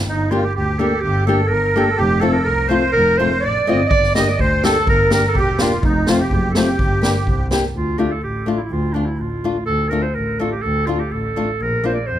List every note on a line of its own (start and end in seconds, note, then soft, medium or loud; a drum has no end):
0.07 0.36 G1 medium
0.07 0.32 D#4 medium
0.07 0.30 D#4 medium
0.31 0.43 A#3 medium
0.31 0.43 D4 soft
0.31 0.42 F4 medium
0.31 0.44 F4 medium
0.31 0.44 G4 medium
0.42 0.53 G4 medium
0.42 0.54 G4 medium
0.55 0.71 D2 medium
0.55 1.01 G4 medium
0.55 0.80 G4 medium
0.79 0.91 A#3 medium
0.79 0.91 D4 medium
0.79 0.92 G4 medium
0.79 1.02 A4 medium
1.00 1.32 G1 loud
1.00 1.26 G4 loud
1.00 1.25 G4 medium
1.27 1.39 A#3 medium
1.27 1.40 D4 medium
1.27 1.40 G4 medium
1.27 1.49 A4 medium
1.27 1.52 A4 medium
1.47 1.66 G1 medium
1.47 2.00 A#4 medium
1.47 1.76 A#4 medium
1.75 1.87 A#3 medium
1.75 1.88 D4 medium
1.75 1.88 G4 medium
1.75 2.00 A4 medium
1.97 2.28 F1 loud
1.97 2.23 G4 medium
1.97 2.22 G4 medium
2.21 2.34 A3 medium
2.21 2.35 C4 medium
2.21 2.35 F4 medium
2.21 2.34 A4 medium
2.21 2.47 A4 medium
2.32 2.43 A#4 medium
2.44 2.61 C2 medium
2.44 2.70 A#4 medium
2.44 2.68 A#4 medium
2.68 2.82 A3 medium
2.68 2.83 C4 medium
2.68 2.83 F4 medium
2.68 2.94 C5 medium
2.68 2.92 C5 medium
2.92 3.24 F1 loud
2.92 3.20 A#4 loud
2.92 3.16 A#4 medium
3.18 3.31 A3 medium
3.18 3.31 C4 medium
3.18 3.32 F4 medium
3.18 3.40 C5 medium
3.18 3.44 C5 medium
3.40 3.65 A1 medium
3.40 3.86 D5 medium
3.40 3.68 D5 medium
3.67 3.89 G1 medium
3.67 3.79 A3 medium
3.67 3.80 C4 medium
3.67 3.80 F4 medium
3.67 3.83 D#5 medium
3.85 3.91 D#5 medium
3.89 4.20 G1 loud
3.89 4.12 D5 loud
3.89 4.16 D5 medium
3.89 kick medium
4.03 snare soft
4.15 4.28 A#3 medium
4.15 4.28 D4 medium
4.15 4.28 G4 medium
4.15 4.40 D#5 medium
4.15 4.29 D#5 medium
4.15 snare medium
4.28 4.42 D5 medium
4.39 4.54 D2 medium
4.39 4.62 C5 medium
4.39 4.66 C5 medium
4.39 kick medium
4.63 4.75 A#3 medium
4.63 4.76 D4 medium
4.63 4.76 G4 medium
4.63 4.86 A4 medium
4.63 4.87 A4 loud
4.63 snare medium
4.87 5.16 G1 loud
4.87 5.09 A#4 medium
4.87 5.11 A#4 loud
4.87 kick medium
5.10 5.23 A#3 medium
5.10 5.23 D4 medium
5.10 5.23 G4 medium
5.10 5.35 A#4 medium
5.10 5.29 A#4 medium
5.10 snare medium
5.28 5.37 A4 medium
5.34 5.50 E1 medium
5.34 5.59 G4 medium
5.34 kick medium
5.39 5.63 G4 medium
5.58 5.72 A#3 medium
5.58 5.72 D4 medium
5.58 5.83 F4 medium
5.58 5.72 G4 medium
5.58 snare medium
5.62 5.78 F4 medium
5.80 6.12 F1 medium
5.80 6.08 D#4 medium
5.80 5.86 F4 medium
5.80 kick medium
5.85 6.11 D#4 loud
6.07 6.19 A3 medium
6.07 6.20 C4 medium
6.07 6.18 F4 medium
6.07 6.20 F4 medium
6.07 6.23 F4 medium
6.07 snare medium
6.18 6.52 G4 medium
6.18 6.49 G4 medium
6.31 6.46 F#1 medium
6.31 kick medium
6.50 6.58 A4 medium
6.55 6.67 A3 medium
6.55 6.68 C4 medium
6.55 6.68 F4 medium
6.55 7.47 G4 medium
6.55 7.52 G4 medium
6.55 snare medium
6.79 7.08 G1 medium
6.79 kick medium
7.02 7.14 A#3 medium
7.02 7.15 D4 medium
7.02 7.15 G4 medium
7.02 snare medium
7.27 7.41 C2 medium
7.27 kick medium
7.51 7.63 A#3 medium
7.51 7.63 D4 medium
7.51 7.64 G4 medium
7.51 snare medium
7.74 8.03 D2 medium
7.74 8.00 F4 medium
7.98 8.11 A3 medium
7.98 8.11 D4 medium
7.98 8.11 F4 medium
7.98 8.13 G4 medium
8.12 8.23 A4 medium
8.23 8.52 A1 medium
8.23 8.51 G4 medium
8.46 8.59 A3 medium
8.46 8.59 D4 soft
8.46 8.60 F4 medium
8.46 8.59 F4 medium
8.58 8.61 E4 medium
8.58 8.65 F4 medium
8.63 8.72 E4 medium
8.70 9.00 D2 medium
8.70 8.94 F4 medium
8.93 9.07 A3 medium
8.93 9.07 D4 medium
8.93 9.07 D4 soft
8.93 9.08 F4 medium
9.05 9.22 E4 medium
9.18 9.48 A1 medium
9.18 9.65 F4 medium
9.44 9.56 A3 medium
9.44 9.56 D4 soft
9.44 9.56 F4 medium
9.66 9.96 D2 medium
9.66 9.91 A4 loud
9.89 10.03 A3 soft
9.89 10.04 D4 soft
9.89 10.04 F4 medium
9.89 10.04 A#4 medium
10.03 10.16 C5 medium
10.15 10.44 A1 medium
10.15 10.41 A#4 medium
10.39 10.52 A3 medium
10.39 10.52 D4 medium
10.39 10.53 F4 medium
10.39 10.51 A4 medium
10.52 10.63 G4 medium
10.62 10.93 D2 medium
10.62 10.88 A4 loud
10.86 11.00 A3 medium
10.86 11.00 D4 medium
10.86 11.01 F4 medium
11.00 11.14 G4 medium
11.12 11.41 A1 medium
11.12 11.63 A4 medium
11.36 11.48 A3 medium
11.36 11.49 D4 medium
11.36 11.49 F4 medium
11.60 11.89 A#1 loud
11.60 11.87 A#4 medium
11.84 11.96 A#3 medium
11.84 11.96 D4 soft
11.84 11.97 F4 medium
11.84 11.94 C5 medium
11.94 12.08 D5 medium
12.06 12.19 F2 medium
12.06 12.19 C5 medium